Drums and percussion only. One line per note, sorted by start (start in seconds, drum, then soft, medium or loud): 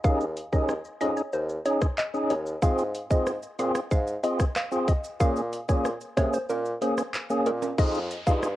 0.04 kick loud
0.04 shaker medium
0.21 shaker medium
0.37 closed hi-hat medium
0.37 shaker medium
0.53 kick medium
0.53 shaker medium
0.69 cross-stick medium
0.69 shaker medium
0.85 shaker soft
1.01 closed hi-hat medium
1.01 shaker medium
1.17 shaker medium
1.33 shaker medium
1.49 shaker medium
1.66 closed hi-hat medium
1.66 shaker medium
1.81 kick medium
1.81 cross-stick medium
1.81 shaker medium
1.98 clap medium
1.98 shaker medium
2.14 shaker medium
2.30 closed hi-hat medium
2.30 shaker medium
2.46 shaker medium
2.62 kick loud
2.62 maracas medium
2.62 shaker medium
2.78 maracas soft
2.78 shaker medium
2.95 closed hi-hat medium
2.95 maracas soft
2.95 shaker medium
3.11 kick medium
3.11 maracas medium
3.11 shaker medium
3.27 cross-stick medium
3.27 shaker medium
3.27 maracas medium
3.42 maracas medium
3.42 shaker medium
3.59 closed hi-hat medium
3.59 shaker medium
3.59 maracas medium
3.75 cross-stick medium
3.75 shaker medium
3.75 maracas medium
3.91 kick medium
3.91 shaker medium
3.91 maracas medium
4.07 shaker medium
4.07 maracas soft
4.24 closed hi-hat medium
4.24 shaker medium
4.24 maracas soft
4.39 kick medium
4.39 cross-stick medium
4.39 shaker medium
4.39 maracas medium
4.56 cross-stick medium
4.56 clap medium
4.56 shaker medium
4.56 maracas medium
4.72 maracas medium
4.72 shaker medium
4.88 kick loud
4.88 closed hi-hat medium
4.88 maracas soft
4.88 shaker medium
5.04 maracas medium
5.04 shaker medium
5.20 kick loud
5.20 shaker medium
5.20 maracas medium
5.36 maracas medium
5.36 shaker medium
5.53 closed hi-hat medium
5.53 shaker medium
5.53 maracas medium
5.69 kick medium
5.69 shaker medium
5.69 maracas medium
5.85 cross-stick medium
5.85 shaker medium
5.85 maracas medium
6.01 maracas medium
6.01 shaker soft
6.17 kick medium
6.17 cross-stick medium
6.17 closed hi-hat medium
6.17 shaker medium
6.17 maracas medium
6.33 shaker medium
6.33 maracas medium
6.49 high timbale medium
6.49 shaker medium
6.49 maracas medium
6.65 maracas soft
6.65 shaker medium
6.82 closed hi-hat medium
6.82 shaker medium
6.82 maracas soft
6.98 cross-stick medium
6.98 shaker medium
6.98 maracas medium
7.14 clap medium
7.14 shaker medium
7.14 maracas medium
7.30 maracas medium
7.30 shaker medium
7.46 closed hi-hat medium
7.46 high timbale medium
7.46 maracas soft
7.46 shaker medium
7.62 high timbale medium
7.62 maracas medium
7.62 shaker medium
7.78 kick loud
7.78 crash loud
7.78 maracas medium
7.78 shaker medium
7.94 maracas soft
7.94 shaker medium
8.11 closed hi-hat medium
8.11 maracas medium
8.11 shaker medium
8.27 kick medium
8.27 maracas medium
8.27 shaker medium
8.43 cross-stick loud
8.43 shaker medium
8.43 maracas medium